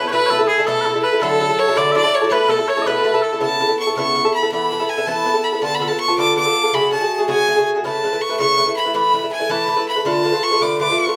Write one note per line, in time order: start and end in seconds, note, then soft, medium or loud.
0.02 0.12 B3 soft
0.02 0.12 E4 medium
0.02 0.11 A4 soft
0.08 0.45 B4 loud
0.08 0.26 B4 medium
0.08 0.11 C#5 medium
0.12 0.29 B2 medium
0.12 0.29 A3 medium
0.12 0.30 E4 medium
0.12 0.31 A4 medium
0.26 0.48 A4 medium
0.26 0.30 C#5 medium
0.30 0.39 B2 medium
0.30 0.40 A3 medium
0.30 0.39 E4 medium
0.30 0.38 A4 medium
0.39 0.59 A3 soft
0.39 0.58 E4 soft
0.39 0.57 A4 medium
0.48 0.67 G#4 medium
0.48 0.66 G#4 medium
0.58 0.66 A3 soft
0.58 0.67 E4 medium
0.58 0.67 A4 medium
0.66 0.83 B2 medium
0.66 0.84 A3 medium
0.66 0.85 E4 medium
0.66 1.01 A4 medium
0.66 0.81 A4 medium
0.66 0.85 A4 medium
0.81 0.94 B2 medium
0.81 1.04 A4 medium
0.81 0.85 B4 medium
0.85 0.94 A3 medium
0.85 0.94 E4 medium
0.85 0.93 A4 medium
0.94 1.14 A3 soft
0.94 1.13 E4 soft
0.94 1.12 A4 medium
1.03 1.20 B4 medium
1.03 1.22 B4 medium
1.13 1.22 A3 soft
1.13 1.21 E4 soft
1.13 1.22 A4 soft
1.21 1.39 D3 medium
1.21 1.39 F#3 medium
1.21 1.40 E4 medium
1.21 1.60 A4 medium
1.21 1.77 A4 medium
1.21 1.40 A4 medium
1.40 1.49 D3 medium
1.40 1.49 F#3 medium
1.40 1.49 E4 medium
1.40 1.48 A4 medium
1.49 1.68 F#3 soft
1.49 1.68 E4 soft
1.49 1.67 A4 medium
1.59 1.79 C#5 loud
1.68 1.76 F#3 soft
1.68 1.76 E4 medium
1.68 1.77 A4 medium
1.77 1.94 D3 medium
1.77 1.94 F#3 medium
1.77 1.95 E4 medium
1.77 1.95 A4 medium
1.77 1.95 D5 medium
1.77 1.91 D5 medium
1.91 2.04 D3 medium
1.91 2.04 F#3 medium
1.91 1.96 E5 medium
1.96 2.04 E4 medium
1.96 2.03 A4 medium
1.96 2.32 D5 medium
1.96 2.16 D5 loud
2.04 2.23 F#3 soft
2.04 2.22 E4 medium
2.04 2.20 A4 medium
2.15 2.28 C#5 medium
2.21 2.31 F#3 soft
2.21 2.30 E4 soft
2.21 2.31 A4 medium
2.29 2.47 B2 medium
2.29 2.48 A3 medium
2.29 2.49 E4 medium
2.29 2.49 A4 medium
2.29 2.49 B4 medium
2.29 2.34 C#5 medium
2.33 2.52 B4 medium
2.48 2.58 B2 medium
2.48 2.59 A3 medium
2.48 2.58 E4 medium
2.48 2.68 A4 medium
2.48 2.70 A4 medium
2.48 2.57 A4 medium
2.58 2.78 A3 soft
2.58 2.77 E4 soft
2.58 2.76 A4 soft
2.68 2.82 C#5 medium
2.68 2.89 C#5 medium
2.77 2.86 A3 medium
2.77 2.86 E4 soft
2.77 2.86 A4 medium
2.82 2.86 D#5 medium
2.86 3.03 B2 medium
2.86 3.03 A3 medium
2.86 3.04 E4 medium
2.86 3.05 A4 medium
2.86 3.22 B4 medium
2.86 3.25 B4 medium
3.04 3.14 B2 soft
3.04 3.14 A3 medium
3.04 3.13 E4 medium
3.04 3.13 A4 medium
3.14 3.33 A3 soft
3.14 3.32 E4 medium
3.14 3.31 A4 medium
3.22 3.41 A4 medium
3.22 3.42 A4 medium
3.33 3.40 A3 soft
3.33 3.40 E4 soft
3.33 3.41 A4 soft
3.40 3.58 C#3 medium
3.40 3.58 B3 medium
3.40 3.59 E4 medium
3.40 3.60 A4 medium
3.40 3.76 A5 medium
3.59 3.69 C#3 soft
3.59 3.69 B3 medium
3.59 3.68 E4 medium
3.59 3.67 A4 medium
3.69 3.88 B3 soft
3.69 3.86 E4 soft
3.69 3.86 A4 soft
3.79 3.96 C#6 medium
3.87 3.96 B3 soft
3.87 3.97 E4 soft
3.87 3.97 A4 soft
3.97 4.14 C#3 medium
3.97 4.14 B3 medium
3.97 4.15 E4 medium
3.97 4.16 A4 medium
3.97 4.31 C#6 medium
4.15 4.25 C#3 soft
4.15 4.25 B3 medium
4.15 4.25 E4 soft
4.15 4.24 A4 medium
4.25 4.43 B3 soft
4.25 4.42 E4 soft
4.25 4.42 A4 medium
4.34 4.51 B5 medium
4.43 4.51 B3 soft
4.43 4.52 E4 soft
4.43 4.52 A4 soft
4.51 4.70 E3 medium
4.51 4.71 B3 medium
4.51 4.71 E4 medium
4.51 4.71 A4 medium
4.51 4.91 B5 medium
4.71 4.80 E3 soft
4.71 4.80 B3 medium
4.71 4.79 E4 soft
4.71 4.78 A4 medium
4.80 4.98 B3 soft
4.80 4.97 E4 soft
4.80 4.96 A4 soft
4.89 5.08 G#5 medium
4.97 5.06 B3 soft
4.97 5.07 E4 soft
4.97 5.07 A4 soft
5.06 5.23 E3 medium
5.06 5.24 B3 medium
5.06 5.25 E4 medium
5.06 5.26 A4 medium
5.06 5.46 A5 loud
5.25 5.35 E3 medium
5.25 5.35 B3 medium
5.25 5.33 E4 medium
5.25 5.32 A4 medium
5.34 5.53 B3 soft
5.34 5.52 E4 soft
5.34 5.51 A4 soft
5.44 5.62 B5 medium
5.53 5.61 B3 soft
5.53 5.62 E4 soft
5.53 5.62 A4 soft
5.62 5.78 D3 medium
5.62 5.79 B3 medium
5.62 5.80 F4 medium
5.62 5.80 A4 medium
5.62 5.76 A5 loud
5.75 5.89 B5 medium
5.79 5.89 D3 soft
5.79 5.90 B3 medium
5.79 5.90 F4 medium
5.79 5.89 A4 medium
5.88 6.08 F4 soft
5.88 6.07 A4 soft
5.88 5.99 A5 loud
5.92 6.09 B3 soft
6.00 6.17 C#6 medium
6.08 6.17 B3 soft
6.08 6.18 F4 soft
6.08 6.18 A4 medium
6.18 6.34 D3 medium
6.18 6.36 B3 medium
6.18 6.36 F4 medium
6.18 6.37 A4 medium
6.18 6.35 D6 medium
6.36 6.45 D3 medium
6.36 6.46 B3 soft
6.36 6.45 F4 medium
6.36 6.44 A4 medium
6.36 6.76 D6 medium
6.45 6.64 B3 soft
6.45 6.63 F4 soft
6.45 6.62 A4 soft
6.63 6.73 B3 soft
6.63 6.73 F4 soft
6.63 6.73 A4 soft
6.73 6.90 C#3 medium
6.73 6.91 A3 medium
6.73 6.92 F#4 medium
6.73 6.92 G#4 medium
6.73 6.92 B5 loud
6.91 7.01 C#3 medium
6.91 7.01 A3 medium
6.91 7.00 F#4 medium
6.91 6.99 G#4 medium
6.91 7.26 A5 medium
7.00 7.19 A3 soft
7.00 7.18 F#4 soft
7.00 7.17 G#4 soft
7.18 7.27 A3 soft
7.18 7.28 F#4 soft
7.18 7.28 G#4 medium
7.28 7.46 C#3 medium
7.28 7.47 A3 medium
7.28 7.47 F#4 medium
7.28 7.47 G#4 medium
7.28 7.68 G#5 loud
7.47 7.56 C#3 medium
7.47 7.57 A3 medium
7.47 7.56 F#4 medium
7.47 7.55 G#4 medium
7.56 7.75 A3 soft
7.56 7.75 F#4 soft
7.56 7.74 G#4 soft
7.75 7.83 A3 soft
7.75 7.84 F#4 soft
7.75 7.84 G#4 soft
7.84 8.02 C#3 medium
7.84 8.03 A3 medium
7.84 8.03 E4 medium
7.84 8.03 B4 medium
7.84 8.23 A5 medium
8.03 8.12 C#3 soft
8.03 8.12 A3 soft
8.03 8.12 E4 medium
8.03 8.11 B4 medium
8.13 8.31 A3 soft
8.13 8.30 E4 soft
8.13 8.28 B4 soft
8.21 8.39 C#6 medium
8.29 8.39 A3 soft
8.29 8.40 E4 soft
8.29 8.39 B4 medium
8.39 8.55 C#3 medium
8.39 8.56 A3 medium
8.39 8.57 E4 medium
8.39 8.58 B4 medium
8.39 8.74 C#6 medium
8.56 8.66 C#3 medium
8.56 8.67 A3 medium
8.56 8.66 E4 soft
8.56 8.65 B4 medium
8.67 8.86 A3 soft
8.67 8.85 E4 soft
8.67 8.84 B4 medium
8.77 8.93 B5 medium
8.85 8.93 A3 soft
8.85 8.94 E4 soft
8.85 8.94 B4 soft
8.94 9.12 E3 medium
8.94 9.12 A3 medium
8.94 9.13 E4 medium
8.94 9.13 B4 medium
8.94 9.29 B5 medium
9.13 9.22 E3 medium
9.13 9.22 A3 soft
9.13 9.22 E4 medium
9.13 9.21 B4 medium
9.22 9.40 A3 soft
9.22 9.39 E4 soft
9.22 9.38 B4 soft
9.32 9.52 G#5 medium
9.39 9.48 A3 soft
9.39 9.49 E4 medium
9.39 9.49 B4 medium
9.50 9.66 E3 medium
9.50 9.67 A3 medium
9.50 9.67 E4 medium
9.50 9.68 B4 medium
9.50 9.87 A5 medium
9.67 9.77 E3 medium
9.67 9.77 A3 medium
9.67 9.77 E4 medium
9.67 9.75 B4 medium
9.77 9.96 A3 soft
9.77 9.95 E4 soft
9.77 9.94 B4 medium
9.89 10.05 B5 medium
9.95 10.05 A3 soft
9.95 10.05 E4 soft
9.95 10.05 B4 soft
10.05 10.22 D3 medium
10.05 10.23 A3 medium
10.05 10.24 F4 medium
10.05 10.24 B4 medium
10.05 10.45 A5 medium
10.23 10.32 D3 medium
10.23 10.33 A3 medium
10.23 10.32 F4 medium
10.23 10.31 B4 medium
10.32 10.52 A3 soft
10.32 10.51 F4 medium
10.32 10.50 B4 medium
10.43 10.64 C#6 loud
10.51 10.60 A3 soft
10.51 10.60 F4 medium
10.51 10.60 B4 medium
10.61 10.79 D3 medium
10.61 10.79 A3 medium
10.61 10.79 F4 medium
10.61 10.80 B4 medium
10.61 10.80 D6 medium
10.80 10.88 D3 medium
10.80 10.89 A3 medium
10.80 10.89 F4 soft
10.80 10.89 B4 medium
10.80 11.00 D6 medium
10.90 11.07 A3 soft
10.90 11.07 F4 soft
10.90 11.05 B4 soft
10.98 11.16 C#6 medium
11.06 11.15 A3 soft
11.06 11.16 F4 soft
11.06 11.15 B4 soft